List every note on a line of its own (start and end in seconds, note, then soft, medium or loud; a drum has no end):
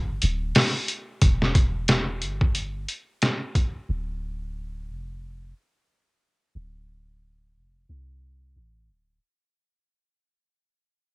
0.00 0.20 G1 medium
0.22 0.52 D1 loud
0.22 closed hi-hat medium
0.55 snare loud
0.55 open hi-hat medium
0.88 closed hi-hat medium
1.22 2.24 E1 loud
1.22 kick loud
1.22 closed hi-hat medium
1.42 snare soft
1.55 kick medium
1.55 closed hi-hat medium
1.88 snare loud
1.88 closed hi-hat medium
2.22 2.86 G1 loud
2.22 closed hi-hat medium
2.41 kick medium
2.55 closed hi-hat medium
2.89 closed hi-hat medium
3.22 snare loud
3.22 closed hi-hat medium
3.55 kick medium
3.55 closed hi-hat medium
3.89 4.91 D1 loud
4.89 5.53 F1 medium
6.55 7.57 D1 medium
7.56 7.85 F1 medium
7.89 8.55 C2 medium
8.56 8.91 A1 medium
8.89 9.19 D1 medium